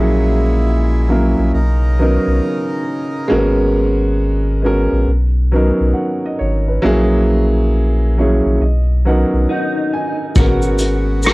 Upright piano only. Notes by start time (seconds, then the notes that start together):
Already playing: F#3 A#3 C#4 E4 G#4
1.08 F#3 A#3 C#4 E4 A#4
1.99 F#3 B3 C#4 D#4 A#4
3.28 G#3 A#3 C#4 F#4 A#4
3.35 B3
4.62 G#3 B3 C#4 F#4 A#4
5.52 F#3 B3 C#4 D#4 A#4
5.93 F#5
6.26 D#5
6.39 C#5
6.68 B4
6.82 F#3 A#3 C#4 E4 G#4
8.18 F#3 A#3 C#4 E4 G#4 C#5
8.62 D#5
9.05 F#3 B3 C#4 D#4 A#4 F#5
9.51 F#5
9.93 G#5
10.36 G#3 A#3 C#4 F#4 A#4
10.43 B3